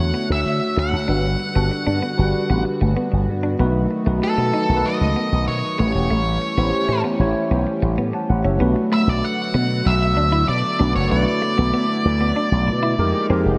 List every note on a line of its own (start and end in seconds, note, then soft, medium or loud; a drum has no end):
0.00 0.12 E2 medium
0.00 1.06 D3 medium
0.00 1.06 A3 medium
0.00 1.10 A3 medium
0.00 1.08 D4 medium
0.00 1.10 E4 soft
0.00 1.09 F#4 medium
0.00 5.75 F#4 medium
0.00 1.06 C#5 medium
0.00 1.11 C#5 medium
0.00 0.27 F#5 medium
0.14 0.25 B3 medium
0.30 0.43 D2 medium
0.30 0.75 E5 medium
0.46 0.59 D3 medium
0.77 0.90 D2 medium
0.77 0.88 A3 medium
0.77 2.62 F#5 medium
0.93 1.06 D2 medium
1.08 1.35 G1 medium
1.08 3.57 D3 medium
1.08 1.43 G3 medium
1.08 3.57 G3 medium
1.08 5.75 B3 medium
1.08 1.19 D4 medium
1.08 1.43 D4 medium
1.08 1.43 F#4 medium
1.08 1.43 B4 medium
1.40 muted clean electric guitar stroke soft
1.55 1.69 G1 medium
1.55 2.01 G3 medium
1.55 1.66 B3 medium
1.55 2.01 D4 medium
1.55 2.02 F#4 medium
1.55 2.02 A4 medium
1.71 muted clean electric guitar stroke soft
1.71 muted slap bass stroke soft
1.87 2.00 G2 medium
1.87 1.98 D4 medium
2.02 2.14 B3 medium
2.17 2.32 G1 medium
2.17 3.09 G3 medium
2.17 3.10 D4 medium
2.17 3.10 F#4 medium
2.17 3.10 B4 medium
2.50 2.63 A1 medium
2.50 2.61 B3 medium
2.65 muted clean electric guitar stroke soft
2.81 2.94 G1 medium
2.81 2.92 A3 medium
2.97 3.08 B3 medium
3.12 3.26 G1 medium
3.12 muted clean electric guitar stroke soft
3.28 3.54 G2 medium
3.43 3.54 D4 medium
3.59 3.86 B1 medium
3.59 5.76 D#3 medium
3.59 5.76 F#3 medium
3.59 3.93 A3 medium
3.59 8.57 A3 medium
3.59 3.70 B3 medium
3.59 3.94 D#4 medium
3.59 3.94 F#4 medium
3.59 3.94 B4 medium
3.91 muted clean electric guitar stroke soft
4.06 4.20 B1 medium
4.06 4.52 A3 medium
4.06 4.17 A3 medium
4.06 4.52 D#4 medium
4.06 4.52 F#4 medium
4.06 4.53 B4 medium
4.22 4.87 A4 medium
4.22 muted clean electric guitar stroke soft
4.22 muted slap bass stroke soft
4.38 4.51 B2 medium
4.38 4.49 B3 medium
4.54 4.64 D#4 medium
4.69 4.82 B1 medium
4.69 5.61 A3 medium
4.69 5.61 D#4 medium
4.69 5.61 F#4 medium
4.69 4.76 A#4 medium
4.77 5.64 B4 medium
4.86 5.44 D#5 medium
5.01 5.14 C#2 medium
5.16 5.27 B3 medium
5.32 5.45 B1 medium
5.48 5.61 B2 medium
5.48 5.78 C#5 medium
5.79 5.92 A1 medium
5.79 8.58 E3 medium
5.79 8.58 G3 medium
5.79 5.90 A3 medium
5.79 6.42 A3 medium
5.79 8.58 C#4 medium
5.79 6.42 E4 medium
5.79 8.58 G4 medium
5.79 6.42 G4 medium
5.79 5.86 B4 medium
5.79 7.00 C#5 medium
5.87 6.46 C#5 medium
5.95 6.08 E1 medium
6.10 6.37 A1 medium
6.10 6.21 A3 medium
6.42 muted clean electric guitar stroke soft
6.57 6.70 A1 medium
6.57 7.03 A3 medium
6.57 6.68 B3 medium
6.57 7.03 E4 medium
6.57 7.03 G4 medium
6.57 6.64 C5 medium
6.65 7.07 C#5 medium
6.73 muted slap bass stroke soft
6.73 muted clean electric guitar stroke soft
6.89 7.02 A2 medium
6.89 7.00 C#4 medium
7.04 7.15 B3 medium
7.19 7.33 A1 medium
7.19 8.11 A3 medium
7.19 8.11 E4 medium
7.19 8.11 G4 medium
7.19 7.99 C#5 medium
7.51 7.64 B1 medium
7.51 7.62 B3 medium
7.67 muted clean electric guitar stroke soft
7.82 7.96 A1 medium
7.82 7.93 A3 medium
7.98 8.11 A2 medium
7.98 8.09 B3 medium
8.13 8.28 F#5 soft
8.13 8.29 A5 medium
8.13 muted clean electric guitar stroke soft
8.30 8.43 A1 medium
8.30 8.44 F#5 medium
8.45 8.58 F#1 medium
8.45 8.56 C#4 medium
8.45 8.75 C#5 soft
8.45 8.75 E5 medium
8.60 8.74 B1 loud
8.60 12.94 D3 medium
8.60 12.95 F#3 medium
8.60 9.52 A3 medium
8.60 12.95 A3 medium
8.60 8.71 B3 medium
8.60 12.95 B3 medium
8.60 9.52 D4 medium
8.60 11.08 F#4 medium
8.60 9.52 F#4 medium
8.60 9.52 B4 medium
8.76 muted clean electric guitar stroke soft
8.92 9.03 A3 medium
8.92 9.09 E5 medium
9.07 9.21 B1 medium
9.07 9.24 D5 medium
9.24 9.88 F#5 loud
9.54 9.81 B2 medium
9.54 9.65 B3 medium
9.85 10.17 B1 medium
9.85 10.48 E5 medium
9.85 muted clean electric guitar stroke soft
10.17 10.43 D2 medium
10.17 10.28 D4 medium
10.32 10.43 E4 medium
10.48 10.62 B2 medium
10.48 10.92 D5 medium
10.79 10.93 B1 medium
10.79 11.02 A3 medium
10.79 10.90 D4 medium
10.79 11.02 D4 medium
10.79 11.03 F#4 medium
10.79 11.03 B4 medium
10.96 11.09 F#1 medium
10.96 11.10 C#5 medium
11.10 11.24 B1 loud
11.10 12.02 A3 medium
11.10 12.02 D4 medium
11.10 12.97 E4 medium
11.10 12.02 F#4 medium
11.10 12.02 B4 medium
11.10 13.26 D5 medium
11.26 muted clean electric guitar stroke soft
11.42 11.53 A3 medium
11.58 11.71 B1 medium
11.58 11.69 B3 medium
11.74 11.85 B3 medium
11.90 muted clean electric guitar stroke soft
12.05 12.31 D2 medium
12.21 12.31 B3 medium
12.36 12.47 D4 medium
12.52 12.69 B1 loud
12.67 12.94 B2 medium
12.67 muted clean electric guitar stroke soft
12.83 12.94 E4 medium
12.98 13.12 F2 loud
12.98 13.58 F3 medium
12.98 13.58 G#3 medium
12.98 13.24 G#3 medium
12.98 13.58 A#3 medium
12.98 13.58 D#4 medium
12.98 13.24 D#4 medium
12.98 13.58 G4 medium
12.98 13.24 G4 medium
12.98 13.24 A#4 loud
13.30 13.43 F2 medium
13.30 13.53 G#3 medium
13.30 13.41 C4 medium
13.30 13.53 D#4 medium
13.30 13.53 G4 medium
13.30 13.53 A#4 loud
13.46 13.58 F1 medium